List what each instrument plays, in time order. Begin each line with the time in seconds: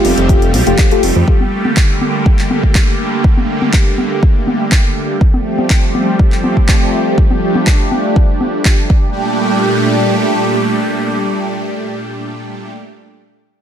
Already playing: supersaw synth F3 G3 A3 C4 G4, synth stab A3 F4 G4
0.05 detuned saw bass F1, open hi-hat, high conga
0.17 detuned saw bass F1, closed hi-hat
0.29 synth stab A3 F4 G4, kick, closed hi-hat
0.42 closed hi-hat
0.54 detuned saw bass C2, open hi-hat, high conga
0.67 detuned saw bass F1, synth stab A3 F4 G4, closed hi-hat
0.78 kick, clap, closed hi-hat
0.91 synth stab A3 F4 G4, closed hi-hat
1.03 detuned saw bass F1, open hi-hat
1.16 detuned saw bass F2, low conga
1.28 supersaw synth D3 A#3, kick
1.41 high conga
1.65 high conga
1.77 kick, clap
2.01 high conga
2.26 kick
2.39 clap
2.51 high conga
2.63 kick
2.75 kick, clap
3.24 kick
3.37 high conga
3.62 high conga
3.73 kick, clap
3.98 high conga
4.23 kick
4.47 high conga
4.72 kick, clap
5.21 supersaw synth F3 G3 A3 C4 G4, kick
5.34 high conga
5.58 high conga
5.70 kick, clap
5.95 high conga
6.19 kick
6.32 clap
6.44 high conga
6.57 kick
6.69 kick, clap
7.18 supersaw synth D4, kick
7.31 high conga
7.55 high conga
7.67 kick, clap
7.92 high conga
8.16 kick
8.41 high conga
8.65 kick, clap
8.90 supersaw synth A#2 G3 A3 D4 G4, kick